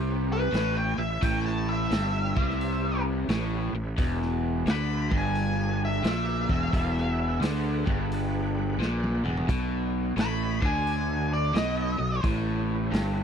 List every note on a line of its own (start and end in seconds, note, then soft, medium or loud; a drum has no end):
0.00 0.49 C2 loud
0.00 0.53 C3 medium
0.00 1.19 E4 medium
0.00 1.19 G4 medium
0.00 1.19 B4 medium
0.00 1.19 C#5 medium
0.33 0.76 B4 loud
0.53 0.94 A1 medium
0.53 0.96 A2 loud
0.53 snare loud
0.53 open hi-hat soft
0.78 0.99 G5 medium
0.98 1.20 A1 medium
0.98 1.17 A2 medium
0.98 1.21 E5 medium
1.22 1.87 A1 medium
1.22 1.90 A2 loud
1.22 3.96 E4 medium
1.22 3.96 G4 medium
1.22 3.96 B4 medium
1.22 3.96 C#5 medium
1.22 1.45 G5 medium
1.22 kick loud
1.22 open hi-hat medium
1.46 1.68 A5 medium
1.46 snare soft
1.69 3.02 E5 medium
1.91 2.33 G1 medium
1.91 2.35 G2 medium
1.91 snare loud
1.91 open hi-hat medium
2.37 3.25 C2 medium
2.37 3.28 C3 medium
2.37 kick loud
2.50 snare soft
2.61 open hi-hat soft
3.29 3.70 A1 medium
3.29 3.73 A2 loud
3.29 snare loud
3.29 open hi-hat soft
3.73 3.96 A1 medium
3.73 3.94 A2 medium
3.97 4.63 E1 medium
3.97 4.66 E2 medium
3.97 6.70 F#4 medium
3.97 6.71 G#4 medium
3.97 6.70 B4 medium
3.97 6.70 D5 medium
3.97 kick loud
3.97 open hi-hat soft
4.22 snare soft
4.66 5.08 D2 medium
4.66 5.11 D3 medium
4.66 snare loud
4.66 open hi-hat soft
4.71 5.13 B5 medium
5.11 6.01 G1 medium
5.11 6.03 G2 loud
5.11 kick loud
5.18 5.82 G#5 medium
5.35 open hi-hat soft
5.85 6.05 E5 medium
6.04 6.46 A#1 medium
6.04 6.48 A#2 loud
6.04 snare loud
6.04 open hi-hat soft
6.08 7.40 E5 loud
6.49 6.72 E1 medium
6.49 6.72 E2 medium
6.49 kick medium
6.70 7.38 E1 loud
6.70 7.41 E2 loud
6.70 6.95 A4 medium
6.70 6.95 C5 medium
6.70 6.95 D#5 medium
6.70 6.95 G5 medium
6.70 kick loud
6.70 open hi-hat medium
6.96 9.46 G#4 medium
6.96 9.46 B4 medium
6.96 9.47 D5 medium
6.96 9.46 F#5 medium
6.96 snare soft
7.40 7.83 D2 loud
7.40 7.85 D3 loud
7.40 snare loud
7.40 open hi-hat medium
7.86 8.76 G1 medium
7.86 8.79 G2 medium
7.86 kick medium
8.12 open hi-hat medium
8.78 9.21 A#1 medium
8.78 9.23 A#2 medium
8.78 snare medium
9.04 high tom medium
9.24 9.46 E1 medium
9.24 9.48 E2 medium
9.24 mid tom medium
9.37 floor tom medium
9.46 10.14 B1 medium
9.46 10.16 B2 medium
9.46 12.20 F#4 medium
9.46 12.20 A4 medium
9.46 12.20 C#5 medium
9.46 12.20 D#5 medium
9.46 kick loud
9.46 open hi-hat soft
10.17 10.59 A1 loud
10.17 10.61 A2 medium
10.17 snare loud
10.17 open hi-hat medium
10.21 10.64 B5 medium
10.62 11.51 D2 loud
10.62 11.53 D3 medium
10.62 11.31 G#5 medium
10.62 kick loud
10.87 open hi-hat soft
11.33 11.55 D5 medium
11.54 11.96 B1 medium
11.54 11.98 B2 medium
11.54 12.22 D#5 medium
11.54 snare loud
11.54 open hi-hat soft
11.99 12.22 B1 medium
11.99 12.19 B2 medium
12.23 12.89 A1 medium
12.23 12.92 A2 medium
12.23 13.23 E4 medium
12.23 13.23 G4 medium
12.23 13.23 B4 medium
12.23 13.23 C#5 medium
12.23 kick loud
12.23 open hi-hat soft
12.92 13.23 G1 medium
12.92 13.23 G2 medium
12.92 snare loud
12.92 open hi-hat medium